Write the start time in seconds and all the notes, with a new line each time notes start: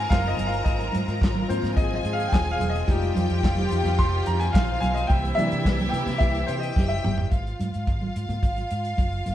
Already playing: D#3 F3 A#3 C4 F4 A#4 D#5 F5 G#5 A#5
0.10 F#1 F5, kick, snare, clap, muted conga, high conga
0.24 D#5, muted conga
0.37 G1, closed hi-hat, high conga, low conga
0.47 F5
0.53 closed hi-hat
0.64 G#1 D#5, kick, closed hi-hat
0.80 closed hi-hat, muted conga
0.92 G#2, closed hi-hat, high conga
1.08 G#2, closed hi-hat
1.22 G#1, kick, snare, clap
1.35 muted conga, high conga
1.48 G#2 F3 A#3 C4 C5, closed hi-hat
1.62 G#2, snare, closed hi-hat, low conga
1.77 G#1 G#4 D#5 G#5, kick, closed hi-hat
1.91 muted conga
1.95 D#5
2.05 G#2, closed hi-hat
2.13 F5
2.20 closed hi-hat
2.27 G5
2.32 D#1 G#5, kick, snare, clap, muted conga, high conga
2.46 muted conga
2.51 F5
2.59 E1, closed hi-hat, high conga, low conga
2.70 D#5
2.75 closed hi-hat
2.88 F1 D#3 G3 G#3 C4 D#4 F4 G4 G5, kick, closed hi-hat, muted conga
3.02 closed hi-hat, muted conga
3.15 F2, closed hi-hat, high conga
3.29 F2, closed hi-hat
3.43 F1, kick, snare, clap
3.57 closed hi-hat, high conga
3.71 F2, closed hi-hat
3.83 F2, snare, closed hi-hat, low conga
3.99 F1 C6, kick, closed hi-hat
4.26 F2 A#5, closed hi-hat
4.40 G#5, closed hi-hat
4.53 A#1 F4 F5, kick, snare, clap, muted conga, high conga
4.68 muted conga
4.80 B1 G#5, closed hi-hat, high conga, low conga
4.94 D#5, closed hi-hat
5.07 C2 E3 A#3 E4 G4 E5 G5, kick, closed hi-hat, muted conga
5.24 closed hi-hat, muted conga
5.35 C3 E3 A#3 D4 E5, closed hi-hat, high conga
5.52 C3, closed hi-hat
5.65 C2, kick, snare, clap
5.79 closed hi-hat, high conga
5.89 G5
5.93 C3, closed hi-hat, low conga
6.06 C3, snare, closed hi-hat, low conga
6.18 C2 E5, kick, closed hi-hat
6.35 closed hi-hat
6.47 C3 G4 C5 G5, closed hi-hat
6.60 D#5, closed hi-hat
6.76 F#1, kick, snare, muted conga, high conga
6.88 E5, muted conga
7.04 G1, mid tom, high conga, low conga
7.18 floor tom
7.31 G#1 F4 F5, kick, closed hi-hat, muted conga
7.47 closed hi-hat
7.60 G#2, closed hi-hat, high conga
7.74 G#2, closed hi-hat
7.87 G#1, kick, closed hi-hat, muted conga
8.01 high conga
8.16 G#2, closed hi-hat
8.29 G#2, closed hi-hat, low conga
8.43 G#1, kick, closed hi-hat, muted conga
8.57 closed hi-hat, muted conga
8.71 G#2, closed hi-hat
8.85 closed hi-hat
8.97 F#1, kick, closed hi-hat, muted conga, high conga
9.13 closed hi-hat
9.26 G1, closed hi-hat, high conga, low conga